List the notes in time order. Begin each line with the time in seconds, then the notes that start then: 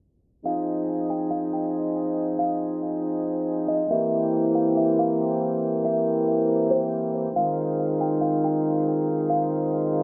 0.45 F3 C4 D#4 G#4 F5
1.10 G5
1.31 F5
1.53 G5
2.39 F5
3.68 D#5
3.90 E3 A#3 G4 E5
4.55 F5
4.77 E5
4.99 F5
5.85 E5
6.71 C5
7.36 D#3 G#3 F4 F5
8.01 G5
8.21 F5
8.44 G5
9.30 F5